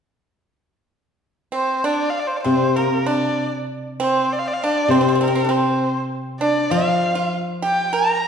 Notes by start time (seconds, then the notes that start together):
1.52 C4 C5
1.84 D4 D5
2.10 F5
2.19 D5
2.27 C5
2.37 D5
2.43 C3 C4 C5
2.76 A#3 A#4
3.06 D4 D5
4.00 C4 C5
4.32 D5
4.39 F5
4.47 D5
4.53 F5
4.63 D4 D5
4.88 C3 C4 C5
5.01 C4
5.09 C4
5.13 C4 C5
5.21 C4 A#4
5.28 C4
5.35 C4
5.44 D4
5.49 C4 C5
6.40 D4 D5
6.70 F3 F4 F5
7.15 F4
7.62 G4 G5
7.93 A#4 A#5